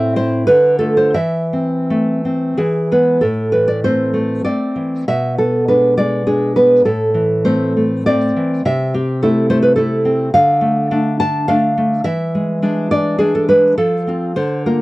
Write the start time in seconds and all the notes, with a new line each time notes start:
Already playing: A2 C4 E4 E5
0.16 E4 C5
0.47 D3 B4
0.79 A3 F4 A4
0.97 C5
1.14 E3 E5
1.53 C4
1.90 A3
2.25 C4
2.57 E3 G#4
2.92 G#3 B3 B4
3.21 A2 A4
3.52 E3 B4
3.68 D5
3.84 A3 C4 C5
4.14 A3
4.45 A3 C4 D5
4.76 E3
5.08 B2 E5
5.38 B3 A4
5.68 G#3 D4 B4
5.97 G#3 D5
6.27 G#3 D4 G#4
6.56 B3 B4
6.85 A2 A4
7.14 E3
7.45 A3 C4 C5
7.77 A3
8.06 A3 C4 D5
8.36 E3
8.65 C3 E5
8.94 C4 G4
9.22 A3 E4 A4
9.50 A3 C5
9.62 B4
9.76 A3 E4 A4
10.05 C4
10.34 D3 F5
10.61 A3
10.91 A3 D4
11.20 D4 A5
11.48 A3 D4 F5
11.78 A3
12.04 E3 E5
12.35 G#3
12.62 G#3 D4
12.91 D4 D5
13.19 G#3 D4 G#4
13.35 A4
13.49 G#3 B4
13.78 F3 A4
14.07 C4 F4
14.36 D3 C5
14.66 A#3 F4 A#4